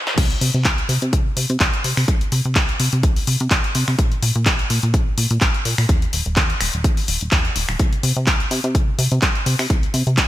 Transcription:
0.07 snare
0.18 analog synth bass C2, kick, closed hi-hat, crash
0.31 closed hi-hat
0.41 analog synth bass C3, open hi-hat
0.54 analog synth bass C3, closed hi-hat
0.65 analog synth bass C2, kick, clap, closed hi-hat
0.78 closed hi-hat
0.89 analog synth bass C3, open hi-hat
1.02 analog synth bass C3, closed hi-hat
1.13 analog synth bass C2, kick, closed hi-hat
1.37 analog synth bass C3, open hi-hat
1.50 analog synth bass C3, closed hi-hat
1.60 analog synth bass C2, kick, clap, closed hi-hat
1.74 closed hi-hat
1.84 analog synth bass C3, open hi-hat
1.97 analog synth bass C3, finger snap, open hi-hat
2.08 analog synth bass C2, kick, closed hi-hat
2.21 closed hi-hat
2.32 analog synth bass C3, open hi-hat
2.45 analog synth bass C3, closed hi-hat
2.55 analog synth bass C2, kick, clap, closed hi-hat
2.69 closed hi-hat
2.80 analog synth bass C3, open hi-hat
2.93 analog synth bass C3, closed hi-hat
3.03 analog synth bass C2, kick, closed hi-hat
3.16 open hi-hat
3.27 analog synth bass C3, open hi-hat
3.40 analog synth bass C3, closed hi-hat
3.51 analog synth bass C2, kick, clap, closed hi-hat
3.64 closed hi-hat
3.75 analog synth bass C3, open hi-hat
3.88 analog synth bass C3, finger snap
3.99 analog synth bass A#1, kick, closed hi-hat
4.12 closed hi-hat
4.22 analog synth bass A#2, open hi-hat
4.35 analog synth bass A#2, closed hi-hat
4.46 analog synth bass A#1, kick, clap, closed hi-hat
4.59 closed hi-hat
4.70 analog synth bass A#2, open hi-hat
4.83 analog synth bass A#2, closed hi-hat
4.94 analog synth bass A#1, kick, closed hi-hat
5.18 analog synth bass A#2, open hi-hat
5.31 analog synth bass A#2, closed hi-hat
5.41 analog synth bass A#1, kick, clap, closed hi-hat
5.54 closed hi-hat
5.65 analog synth bass A#2, open hi-hat
5.78 analog synth bass A#2, finger snap, open hi-hat
5.89 analog synth bass D#2, kick, closed hi-hat
6.02 closed hi-hat
6.13 analog synth bass D#1, open hi-hat
6.26 analog synth bass D#1, closed hi-hat
6.36 analog synth bass D#2, kick, clap, closed hi-hat
6.50 closed hi-hat
6.61 analog synth bass D#1, finger snap, open hi-hat
6.73 analog synth bass D#1, closed hi-hat
6.84 analog synth bass D#2, kick, closed hi-hat
6.97 open hi-hat
7.08 analog synth bass D#1, open hi-hat
7.21 analog synth bass D#1, closed hi-hat
7.31 analog synth bass D#2, kick, clap, closed hi-hat
7.45 closed hi-hat
7.56 analog synth bass D#1, open hi-hat
7.69 analog synth bass D#1, finger snap
7.79 analog synth bass C2, kick, closed hi-hat
7.93 closed hi-hat
8.03 analog synth bass C3, open hi-hat
8.16 analog synth bass C3, closed hi-hat
8.27 analog synth bass C2, kick, clap, closed hi-hat
8.40 closed hi-hat
8.51 analog synth bass C3, open hi-hat
8.64 analog synth bass C3, closed hi-hat
8.75 analog synth bass C2, kick, closed hi-hat
8.99 analog synth bass C3, open hi-hat
9.12 analog synth bass C3, closed hi-hat
9.22 analog synth bass C2, kick, clap, closed hi-hat
9.35 closed hi-hat
9.46 analog synth bass C3, open hi-hat
9.59 analog synth bass C3, finger snap, open hi-hat
9.70 analog synth bass C2, kick, closed hi-hat
9.83 closed hi-hat
9.94 analog synth bass C3, open hi-hat
10.07 analog synth bass C3, closed hi-hat
10.17 analog synth bass C2, kick, clap, closed hi-hat

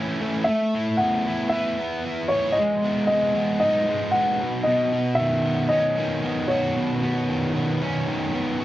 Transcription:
Already playing: distorted electric guitar A2 E3 A3 C#4 E4, upright piano E5
0.20 distorted electric guitar A2 E3 A3 C#4 E4
0.44 distorted electric guitar A3, upright piano E5
0.75 distorted electric guitar E4
0.97 distorted electric guitar B3, upright piano F#5
1.27 distorted electric guitar E4
1.49 distorted electric guitar B4, upright piano E5
1.79 distorted electric guitar B3
2.05 distorted electric guitar E4
2.28 upright piano C#5, distorted electric guitar C#5
2.52 upright piano D#5
2.58 distorted electric guitar G#3
2.84 distorted electric guitar B3
3.07 distorted electric guitar G#3, upright piano D#5
3.36 distorted electric guitar B3
3.60 distorted electric guitar D#4, upright piano D#5
3.89 distorted electric guitar G#3
4.11 distorted electric guitar B3, upright piano F#5
4.41 distorted electric guitar B2
4.64 distorted electric guitar B2, upright piano D#5
4.93 distorted electric guitar B3
5.15 upright piano E5
5.20 distorted electric guitar D#3
5.46 distorted electric guitar B3
5.69 distorted electric guitar C#4, upright piano D#5
5.97 distorted electric guitar D#3
6.24 distorted electric guitar B3
6.48 distorted electric guitar F#4, upright piano C#5
6.76 distorted electric guitar B2
7.03 distorted electric guitar B3
7.29 distorted electric guitar D#3
7.55 distorted electric guitar B3
7.82 distorted electric guitar C#4
8.07 distorted electric guitar D#3
8.34 distorted electric guitar B3
8.61 distorted electric guitar F#4

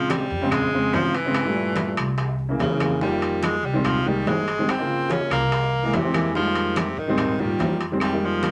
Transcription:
Already playing: upright bass A#1, grand piano C#3 G#3 C4, tenor saxophone F3
0.10 tenor saxophone G3, high bongo, high conga, high timbale, low timbale, claves
0.30 upright bass F2, high bongo, high conga
0.41 grand piano C#3 G#3 C4
0.51 tenor saxophone G#3, high bongo, high conga, low conga, high timbale, claves
0.72 grand piano C#3 G#3 C4, high bongo, high conga
0.93 upright bass G2, tenor saxophone F3, high bongo, low bongo, high conga, high timbale, low timbale
1.13 tenor saxophone E3, high bongo, high timbale
1.25 grand piano C#3 G#3 C4
1.34 high bongo, high conga, high timbale, claves
1.45 grand piano A#2 G3 A3
1.56 high conga
1.76 high bongo, high conga, high timbale, low timbale
1.97 upright bass C2, high bongo, high conga, high timbale, claves
2.18 high bongo, high conga, high timbale
2.39 high bongo, high conga
2.49 grand piano C#3 E3 A#3
2.59 upright bass F2, tenor saxophone C#3, high bongo, low bongo, high conga, high timbale, low timbale
2.70 grand piano C#3 E3 A#3
2.80 grand piano C#3 E3 A#3, high bongo, high conga, high timbale, claves
3.01 grand piano D#3 F3 G3 A#3, tenor saxophone G3, high bongo, high conga
3.22 high conga, high timbale
3.43 tenor saxophone G#3, high bongo, high conga, high timbale, low timbale, claves
3.63 upright bass C2, tenor saxophone G3, high bongo, high conga
3.73 grand piano D#3 G3 G#3 C4
3.85 tenor saxophone F3, high bongo, high conga, low conga, high timbale, claves
4.06 grand piano D#3 G3 G#3 A#3, tenor saxophone G3, high bongo, high conga
4.26 upright bass G1, tenor saxophone G#3, high bongo, low bongo, high conga, high timbale, low timbale
4.48 high bongo, high timbale
4.59 grand piano D#3 G3 G#3 C4
4.68 tenor saxophone C4, high bongo, high conga, high timbale, claves
4.79 grand piano C#3 F3 A#3
4.89 high conga
5.10 tenor saxophone C#4, high bongo, high conga, high timbale, low timbale
5.30 upright bass C2, tenor saxophone A#3, high bongo, high conga, high timbale, claves
5.52 high bongo, high conga, high timbale
5.73 high bongo, high conga
5.83 grand piano E3 G#3 A#3
5.93 upright bass F2, tenor saxophone C3, high bongo, low bongo, high conga, high timbale, low timbale
6.04 grand piano E3 G#3 C4
6.14 grand piano E3 G#3 A#3, high conga, high timbale, claves
6.35 grand piano D#3 G3 G#3 A#3, tenor saxophone F3, high bongo, high conga
6.55 high conga, high timbale
6.76 tenor saxophone C3, high bongo, high conga, high timbale, low timbale, claves
6.96 upright bass G#2, tenor saxophone D#3, high bongo, high conga
7.08 grand piano D#3 G3 G#3 C4
7.17 high bongo, high conga, low conga, high timbale, claves
7.39 grand piano D#3 F3 G3 A#3, tenor saxophone G3, high bongo, high conga, low conga
7.59 upright bass F2, high bongo, low bongo, high conga, high timbale, low timbale
7.81 high bongo, high timbale
7.92 grand piano D#3 G3 G#3 C4
8.00 tenor saxophone G3, high bongo, high timbale, claves
8.12 grand piano D#3 G3 G#3 A#3
8.23 tenor saxophone F3, high conga
8.43 high bongo, high conga, high timbale, low timbale

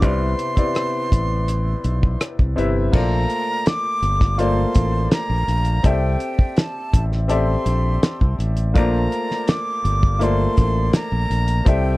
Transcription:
0.01 fingered electric bass C2, grand piano C3 B3 C4 E4 D5, flute C6, kick, closed hi-hat
0.39 closed hi-hat
0.56 grand piano C3 B3 C4 E4 D5, kick, closed hi-hat
0.75 cross-stick, closed hi-hat
1.12 fingered electric bass A1, kick, closed hi-hat
1.48 closed hi-hat
1.84 fingered electric bass B1, closed hi-hat
2.03 kick
2.21 cross-stick, closed hi-hat
2.39 fingered electric bass C2, kick
2.56 fingered electric bass G1, grand piano C3 C4 E4 B4 E5, closed hi-hat
2.92 fingered electric bass A#1, grand piano A3 A#3 F4 C5 D5, flute A#5, kick, crash
3.30 closed hi-hat
3.66 flute D6, snare, closed hi-hat
4.02 fingered electric bass G1, closed hi-hat
4.21 kick, snare
4.38 grand piano A3 A#3 F4 C5 D5, flute C6, closed hi-hat
4.75 fingered electric bass A1, kick, closed hi-hat
5.11 flute A#5, snare, closed hi-hat
5.30 fingered electric bass A#1
5.48 fingered electric bass A#1, closed hi-hat
5.65 closed hi-hat
5.83 fingered electric bass C2, grand piano C4 G4 A4 D5 E5, flute G5, kick, closed hi-hat
6.20 closed hi-hat
6.39 kick
6.57 flute A5, snare, closed hi-hat
6.93 fingered electric bass A1, kick, closed hi-hat
7.12 snare
7.28 grand piano C4 G4 A4 D5 E5, flute C6, closed hi-hat
7.66 fingered electric bass A#1, closed hi-hat
8.03 snare, closed hi-hat
8.21 fingered electric bass C2, kick
8.39 fingered electric bass A1, closed hi-hat
8.57 closed hi-hat
8.74 fingered electric bass A#1, grand piano A3 A#3 F4 C5 D5, flute A#5, kick, closed hi-hat
9.12 closed hi-hat
9.31 snare
9.48 flute D6, snare, closed hi-hat
9.85 fingered electric bass G1, closed hi-hat
10.03 kick
10.19 grand piano A3 A#3 F4 C5 D5, closed hi-hat
10.23 flute C6
10.57 fingered electric bass A1, kick, closed hi-hat
10.93 flute A#5, snare, closed hi-hat
11.12 fingered electric bass A#1
11.30 fingered electric bass A#1, closed hi-hat
11.48 closed hi-hat
11.65 fingered electric bass C2, grand piano C4 G4 A4 D5 E5, flute G5, kick, closed hi-hat

